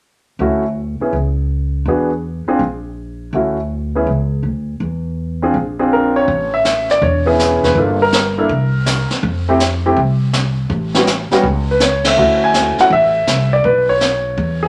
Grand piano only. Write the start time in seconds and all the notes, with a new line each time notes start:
0.40 A3 C#4 E4 F#4
1.01 B3 C#4 E4 G#4
1.88 B3 D4 F#4 G#4
2.48 C4 D4 F4 G#4
3.34 A3 C#4 E4 F#4
3.95 B3 C#4 E4 G#4
5.42 C4 D4 F4 G#4
5.79 C4 D4 F4 G#4
5.93 A#4
6.16 C#5
6.54 E5
6.91 D5
7.03 C#5
7.26 B3 C#4 E4 G#4
7.65 B4
7.77 A#3 D4 F4 A4
8.02 A#4
8.38 A#3 D4 E4 A4
9.49 A3 C4 E4 G4
9.86 A3 C4 E4 G4
10.96 G3 B3 C#4 F#4
11.32 G3 B3 C#4 F#4
11.71 B4
11.83 C#5
12.07 E5
12.18 A3 C#4 E4 F#4
12.44 G#5
12.80 A3 C#4 E4 F#4 F#5
12.93 E5
13.53 D5
13.65 B4
13.89 C#5
14.63 G#4